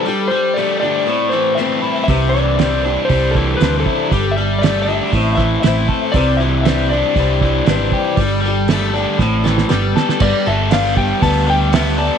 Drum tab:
CC |----------------|----------------|----------------|----------------|
HH |----------------|o---o---o---o---|o---o---o---o---|o---o---o---o---|
SD |----------------|----o-------o---|----o-----o-o---|----o-------o---|
BD |----------------|o-------o-o---o-|o-------o-o---o-|o-------o-o---o-|

CC |----------------|x---------------|
HH |o---o-----------|----o---o---o---|
SD |----o---o-ooo-oo|----o-------o---|
BD |o-------o-------|o-----o-o-------|